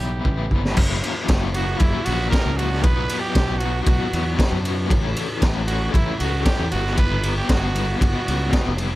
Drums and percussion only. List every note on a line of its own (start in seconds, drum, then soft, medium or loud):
0.25 kick medium
0.51 kick medium
0.65 snare medium
0.77 kick loud
0.77 crash loud
1.04 ride medium
1.28 kick loud
1.28 snare loud
1.28 ride loud
1.54 ride medium
1.80 kick loud
1.80 ride loud
2.06 ride medium
2.32 kick loud
2.32 snare loud
2.32 ride medium
2.59 ride medium
2.73 snare soft
2.83 kick loud
2.83 ride medium
3.09 ride medium
3.35 kick loud
3.35 snare loud
3.35 ride medium
3.60 ride medium
3.86 kick loud
3.86 ride loud
4.13 ride medium
4.39 kick loud
4.39 snare loud
4.39 ride loud
4.65 ride medium
4.90 kick loud
4.90 ride loud
5.16 ride medium
5.42 kick loud
5.42 snare loud
5.42 ride loud
5.68 ride medium
5.94 kick loud
5.94 ride loud
6.20 ride medium
6.45 kick loud
6.45 snare loud
6.45 ride loud
6.72 ride medium
6.86 snare soft
6.97 kick loud
6.97 ride loud
7.23 ride medium
7.49 kick loud
7.49 snare loud
7.49 ride loud
7.76 ride medium
8.01 kick loud
8.01 ride loud
8.28 ride medium
8.53 kick loud
8.53 snare loud
8.53 ride loud
8.78 ride medium